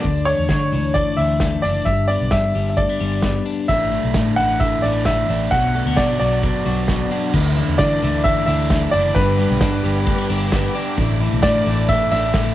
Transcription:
Already playing: D4 D5
0.04 D2 D3, kick, closed hi-hat
0.25 A3 C#5, open hi-hat
0.39 E2
0.49 D3 D4, kick, snare, closed hi-hat
0.72 D2 E3, open hi-hat
0.94 A3 D5, kick, closed hi-hat
1.17 D2 E3 E5, open hi-hat
1.40 A3, kick, snare, closed hi-hat
1.62 F#1 D4 D5, open hi-hat
1.85 G1 G2 E5, kick, closed hi-hat
2.08 B3 D5, open hi-hat
2.21 B1
2.31 G2 D4 E5, kick, snare, closed hi-hat
2.55 G1 G3, open hi-hat
2.70 E5
2.77 A3 D5, kick, closed hi-hat
2.89 B3
3.00 G1 G3, open hi-hat
3.22 B3, kick, snare, closed hi-hat
3.46 D4, open hi-hat
3.68 A1 A2 D3 A3 D4 E4 E5, kick, closed hi-hat
3.91 A3 D4 E4, open hi-hat
4.03 B1
4.14 A2 D3 A3 D4 E4, kick, snare, closed hi-hat
4.36 A1 E3 A3 D4 E4 F#5, open hi-hat
4.60 A2 D3 A3 D4 E4 E5, kick, closed hi-hat
4.82 A1 E3 A3 D4 E4 D5, open hi-hat
5.05 D3 A3 D4 E4 E5, kick, snare, closed hi-hat
5.29 A1 A3 D4 E4, open hi-hat
5.51 B1 B2 F#3 B3 D4 F#4 F#5, kick, closed hi-hat
5.74 A3 B3 D4 F#4, open hi-hat
5.86 D2 B3
5.96 B2 F#3 B3 D4 F#4 D5, kick, snare, closed hi-hat
6.19 B1 F#3 B3 D4 F#4 D5, open hi-hat
6.42 B2 F#3 B3 D4 F#4, kick, closed hi-hat
6.65 B1 F#3 B3 D4 F#4, open hi-hat
6.88 F#3 B3 D4 F#4, kick, snare, closed hi-hat
7.11 B3 D4 F#4, open hi-hat
7.34 D2 D3 E3 A3 D4 E4 A4 E5 D6, kick, crash
7.56 E3 A3 D4 E4, open hi-hat
7.68 E2
7.78 D3 E3 A3 D4 E4 D5, kick, snare, closed hi-hat
8.02 D2 E3 A3 D4 E4, open hi-hat
8.24 E3 A3 D4 E4 E5, kick, closed hi-hat
8.46 D2 A3 D4 E4 E5, open hi-hat
8.70 D3 E3 A3 D4 E4, kick, snare, closed hi-hat
8.91 F#1 D4 E4 D5, open hi-hat
8.96 A3
9.15 G1 G2 D3 G3 B3 D4 G4 B4 G5, kick, closed hi-hat
9.39 G3 B3 D4 G4, open hi-hat
9.50 B1
9.61 G2 D3 G3 B3 D4 G4, kick, snare, closed hi-hat
9.84 G1 G3 B3 D4 G4, open hi-hat
10.06 G3 A3 B3 D4 G4, kick, closed hi-hat
10.18 B3
10.29 G1 G3 B3 D4 G4, open hi-hat
10.52 G2 D3 G3 B3 D4 G4, kick, snare, closed hi-hat
10.75 G3 B3 D4 G4, open hi-hat
10.97 A1 A2 D3 A3 D4 E4 A4 E5, kick, closed hi-hat
11.20 E3 A3 D4 E4, open hi-hat
11.32 B1
11.43 A2 D3 A3 D4 E4 D5, kick, snare, closed hi-hat
11.65 A1 E3 A3 D4 E4, open hi-hat
11.88 D3 A3 D4 E4 E5, kick, closed hi-hat
12.11 A1 A3 D4 E4 E5, open hi-hat
12.34 A2 D3 A3 D4 E4, kick, snare, closed hi-hat

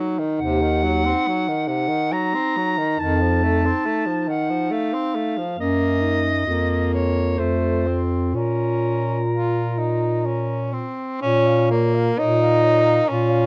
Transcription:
Already playing: F#3 D#4
0.19 D#3
0.39 D#2 C3 F#5
0.62 D#3
0.83 F#3
1.05 C4
1.28 F#3
1.49 D#3
1.68 C3 F#5
1.89 D#3
2.12 F#3 A#5
2.35 C4
2.57 F#3
2.78 D#3
2.98 F2 D#3 D#4 A5
3.21 F3
3.43 A3
3.66 C4
3.86 A3
4.06 F3
4.28 D#3 F#5
4.50 F3
4.71 A3 F5
4.94 C4
5.15 A3
5.38 F3
5.58 F#2 A#3 C#4 D#5
6.01 D#4
6.46 F2 A#3 F4
6.94 C#5
7.38 F2 A3 F4 C5
7.87 C4
8.33 A#2 C#4 F4 A#4
9.30 F4
9.78 D#4
10.26 C#4
10.73 C4
11.22 A#2 C#4 C#5
11.47 F5
11.71 A#3 C#5
11.95 F5
12.18 A#2 D#4 A#4 C#5
12.41 F5
12.63 C#5
12.84 F5
13.07 A#2 C#4 C#5
13.12 F4
13.29 F5

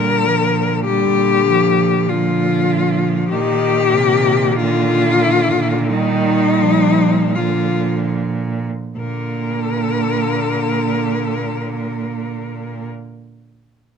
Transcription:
Already playing: A#2 D3 G3 A#4
0.25 F3
0.85 D3 G3 G4
1.47 F3
2.07 D3 F3 F4
3.29 A#2 D#3 G4
3.93 C3
4.56 D3 F4
5.89 D#3 G3 D#4
6.61 F3
7.36 D3 F3 F4
8.97 A#2 D3 A#3 A#4

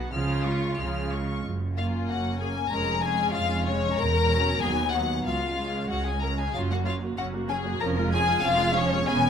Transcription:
Already playing: B3 F#4 F#5
0.13 C#2 C#3 F3 F4 G#4 F6
0.46 G#3 F4 C#6
0.79 C#2 C#3 F3 G#4 F6
1.12 G#3 F4 C#6
1.45 F#1 F#2
1.77 A#3 C#4 F4 F5
2.09 F#1 F#2 F#4 F#5
2.40 A#3 C#4 G#4 G#5
2.71 F1 F2 G#3 C#4 A#4 A#5
3.02 G#3 C#4 G#4 G#5
3.33 F1 F2 F4 F5
3.66 G#3 C#4 C#5
3.98 E1 E2 A#4 A#5
4.29 F#3 C#4
4.60 D#2 F#3 B3 G#4 G#5
4.92 F#3 B3 F#4 F#5
5.25 C#2 F4 F5
5.58 G#3 C#4
5.89 C#2 F#4 F#5
6.06 G#4 G#5
6.22 G#3 C#4 A#4 A#5
6.39 G#4 G#5
6.54 F#1 F#2 F#3 C#4 F4 F5
6.70 A#3 F#4 F#5
6.85 F#3 C#4 F4 F5
7.01 A#3 F#4
7.17 F#1 F#2 F#3 C#4 F#4 F#5
7.34 A#3 F#4
7.49 F#3 C#4 G#4 G#5
7.65 A#3 F#4
7.81 F1 F2 F3 C#4 A#4 A#5
7.97 G#3 F4
8.12 F3 C#4 G#4 G#5
8.28 G#3 F4
8.43 F1 F2 F3 C#4 F4 F5
8.60 G#3 F4
8.75 F3 C#4 C#5
8.90 G#3 F4
9.06 E1 E2 B3 C#4 G#4 G#5

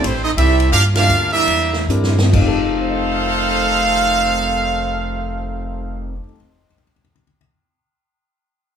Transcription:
0.03 A1 E3 G3 A3 C4 E4 G4 C5, ride
0.24 C4 D#4 E4 A4 D#5
0.36 C2 G3 C4 E4 G4 A4 E5, hi-hat pedal, ride
0.60 ride
0.71 G2 A#3 D4 F4 G4 A#4 F5, ride
0.92 A#3 D4 F4 G4 A#4 F5, snare, ride
1.09 D2, hi-hat pedal
1.32 G3 A#3 D4 E4 G4 A#4 E5
1.47 E2, ride
1.73 snare
1.88 G2 C4 D4 E4 G4 A#4, hi-hat pedal
2.04 snare
2.18 snare
2.23 F2
2.29 F1 F3
2.33 F2 C3 D#3 A3 D#4 A4 C5 F5, kick, crash
2.41 G4
2.48 A4
2.81 C5
2.89 D#5
2.97 G5
3.06 C6
3.16 D#6
3.27 G6
3.38 C7
3.51 D#7

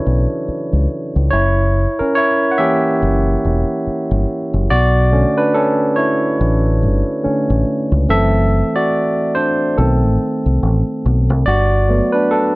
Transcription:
Already playing: C#4 D4 E4 A4 B4 C#5
0.06 B1
0.48 muted fingered electric bass stroke
0.73 C#2
1.16 C#2
1.30 F#1 E4 C#5
1.99 C#4 A#4, muted fingered electric bass stroke
2.15 E4 C#5
2.51 F#5
2.58 E3 A#3 C#4 G4 E5
3.02 F#1
3.45 E1
3.87 muted fingered electric bass stroke
4.11 G1
4.54 F#1
4.70 B1 F#4 D5
5.12 D3 A3 C#4
5.38 D4 B4
5.54 C#4 A4
5.96 E4 C#5
6.41 A1
6.83 G1
7.24 D3 A3 C#4, muted fingered electric bass stroke
7.50 A1
7.92 C#2
8.09 F#1 E3 A3 C4 A4 E5
8.76 F#4 D5
9.35 D4 C5
9.78 B1 D#3 A3 C4 A4
10.04 A1
10.46 C2
10.63 A1
11.06 B1
11.30 C2
11.46 G1 F#4 D5
11.89 F#3 A3 B3
12.12 D4 B4
12.31 D4 A4

